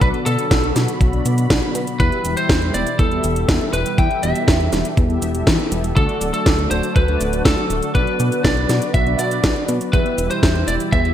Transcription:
Already playing: D3 F#3 F#4
0.01 B1 B2 B3 D4 F#4 B4 D5 B5, kick, closed hi-hat, cabasa
0.14 closed hi-hat
0.26 B2 A4, closed hi-hat, cabasa
0.39 B3 D4 F#4 D5, closed hi-hat, cabasa
0.51 B1, kick, snare, closed hi-hat, cabasa
0.64 closed hi-hat
0.76 B2 B3 D4 F#4 D5, snare, closed hi-hat, cabasa
0.88 closed hi-hat, cabasa
1.01 B1, kick, closed hi-hat, cabasa
1.13 B3 D4 F#4 D5, closed hi-hat
1.25 B2, closed hi-hat, cabasa
1.38 B3 D4 F#4 D5, closed hi-hat, cabasa
1.50 B1, kick, snare, closed hi-hat, cabasa
1.63 B3 D4 F#4 D5, closed hi-hat
1.75 B2, closed hi-hat, cabasa
1.87 closed hi-hat, cabasa
2.00 E2 E3 G3 B3 E4 G4 B4 E5, kick, closed hi-hat, cabasa
2.12 closed hi-hat
2.25 E1, closed hi-hat, cabasa
2.37 G3 E4 G4 C5 E5, closed hi-hat, cabasa
2.49 E2, kick, snare, closed hi-hat, cabasa
2.62 closed hi-hat
2.74 E1 B3 E4 G4 D5 E5, closed hi-hat, cabasa
2.87 closed hi-hat, cabasa
2.99 E2 A4, kick, closed hi-hat, cabasa
3.11 B3 E4 G4 E5, closed hi-hat
3.24 E1, closed hi-hat, cabasa
3.36 B3 E4 G4 E5, closed hi-hat, cabasa
3.49 E2, kick, snare, closed hi-hat, cabasa
3.61 B3 E4 G4 E5, closed hi-hat
3.73 E1 B4, closed hi-hat, cabasa
3.86 closed hi-hat, cabasa
3.98 E2 B3 E4 G4 A4 E5 G5, kick, closed hi-hat, cabasa
4.11 closed hi-hat
4.23 E1 E5, closed hi-hat, cabasa
4.35 B3 E4 G4 E5, closed hi-hat, cabasa
4.48 E2, kick, snare, closed hi-hat, cabasa
4.60 closed hi-hat
4.73 E1 B3 E4 G4 E5, snare, closed hi-hat, cabasa
4.85 closed hi-hat, cabasa
4.97 E2, kick, closed hi-hat, cabasa
5.10 B3 E4 G4 E5, closed hi-hat
5.22 E1, closed hi-hat, cabasa
5.35 B3 E4 G4 E5, closed hi-hat, cabasa
5.47 E2, kick, snare, closed hi-hat, cabasa
5.59 B3 E4 G4 E5, closed hi-hat
5.72 E1, closed hi-hat, cabasa
5.84 closed hi-hat, cabasa
5.96 D2 D3 F#3 A3 D4 F#4 A4 D5, kick, closed hi-hat, cabasa
6.09 closed hi-hat
6.21 D1, closed hi-hat, cabasa
6.34 A3 D4 F#4 A4 D5, closed hi-hat, cabasa
6.46 D2, kick, snare, closed hi-hat, cabasa
6.59 closed hi-hat
6.71 D1 A3 D4 F#4 C5 D5, closed hi-hat, cabasa
6.83 closed hi-hat, cabasa
6.96 D2 B4, kick, closed hi-hat, cabasa
7.08 A3 D4 F#4 D5, closed hi-hat
7.21 D1, closed hi-hat, cabasa
7.33 A3 D4 F#4 D5, closed hi-hat, cabasa
7.45 D2 A4, kick, snare, closed hi-hat, cabasa
7.58 A3 D4 F#4 D5, closed hi-hat
7.70 D1, closed hi-hat, cabasa
7.83 closed hi-hat, cabasa
7.95 B1 B3 D4 F#4 B4 D5, kick, closed hi-hat, cabasa
8.07 closed hi-hat
8.20 B2, closed hi-hat, cabasa
8.32 B3 D4 F#4 D5, closed hi-hat, cabasa
8.44 B1 D5, kick, snare, closed hi-hat, cabasa
8.57 closed hi-hat
8.69 B2 B3 D4 F#4 D5, snare, closed hi-hat, cabasa
8.82 closed hi-hat, cabasa
8.94 B1 E5, kick, closed hi-hat, cabasa
9.06 B3 D4 F#4 D5, closed hi-hat
9.19 B2 D5, closed hi-hat, cabasa
9.31 B3 D4 F#4 D5, closed hi-hat, cabasa
9.44 B1, kick, snare, closed hi-hat, cabasa
9.56 B3 D4 F#4 D5, closed hi-hat
9.69 B2, closed hi-hat, cabasa
9.81 closed hi-hat, cabasa
9.93 E2 B2 E3 G3 B3 E4 G4 B4 E5, kick, closed hi-hat, cabasa
10.06 closed hi-hat
10.18 E1, closed hi-hat, cabasa
10.31 G3 E4 G4 C5 E5, closed hi-hat, cabasa
10.43 E2, kick, snare, closed hi-hat, cabasa
10.55 closed hi-hat
10.68 E1 B3 E4 G4 D5 E5, closed hi-hat, cabasa
10.80 closed hi-hat, cabasa
10.92 E2 E5, kick, closed hi-hat, cabasa
11.05 B3 E4 G4 E5, closed hi-hat

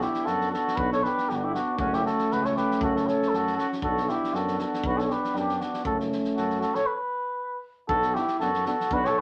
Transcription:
Already playing: B3 D4
0.01 E4 G4, snare
0.14 snare
0.25 F#2 F#4 A4, snare
0.41 snare
0.51 F#4 A4, snare
0.68 snare
0.76 B1 F#4 B4, kick
0.92 A4 C#5, snare
1.03 G4 B4, snare
1.18 snare
1.29 G1 D4 G4, snare
1.34 D4 F#4
1.44 E4 G4
1.54 D4 F#4, snare
1.78 F#1 A3 C#4 F#4, kick
1.93 E4 G4, snare
2.04 F#4 A4, snare
2.18 snare
2.30 C#2 F#4 B4, snare
2.44 A4 C#5, snare
2.56 G4 B4, snare
2.71 snare
2.81 F#1 F#4 A4, kick
2.95 F#4 A4, snare
3.07 A4 C#5, snare
3.22 snare
3.30 F#2 A4, snare
3.35 F#4
3.47 snare
3.56 F#4 A4, snare
3.72 snare
3.82 B1 B3 D4 F#4 A4, kick
3.97 snare
4.09 E4 G4, snare
4.24 snare
4.33 F#2 F#4 A4, snare
4.48 snare
4.58 F#4 A4, snare
4.74 snare
4.84 B1 F#4 B4, kick
4.97 A4 C#5, snare
5.09 G4 B4, snare
5.24 snare
5.34 F#2 D4 G4, snare
5.49 snare
5.61 D4 F#4, snare
5.74 snare
5.85 F#1 A3 C#4 F#4 A4, kick
6.00 snare
6.12 snare
6.24 snare
6.36 F#2 F#4 A4, snare
6.50 snare
6.60 F#4 A4, snare
6.74 A4 C#5, snare
6.87 B4
7.88 B1 B3 D4 F#4 A4, kick
8.02 snare
8.14 B3 D4 E4 G4, snare
8.28 snare
8.40 F#2 B3 D4 F#4 A4, snare
8.54 snare
8.66 B3 D4 F#4 A4, snare
8.80 snare
8.90 B1 B3 D4 F#4 B4, kick
9.05 A4 C#5, snare
9.15 B3 D4

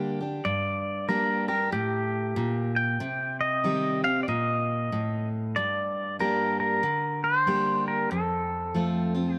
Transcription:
Already playing: D3 G3 A#3 D4 G4
0.20 D4 G4
0.45 G2 D5
1.08 G3 A#3 D4 G4 A#4
1.48 D4 G4 A#4
1.72 A2 G4
2.36 A#2
2.76 G5
3.00 C3
3.41 D#5
3.64 D#3 G3 C4 G4
4.04 C4 G4 F5
4.23 D5
4.28 A#2 D#5
4.92 A2
5.56 G2 D5
6.19 G3 A#3 D4 G4 A#4
6.60 A#4
6.83 D3
7.24 C5
7.47 G3 A#3 D4 G4
7.88 A#4
8.11 F2 A4
8.74 F3 A3 C4 F4
9.14 C4 F4
9.35 G4

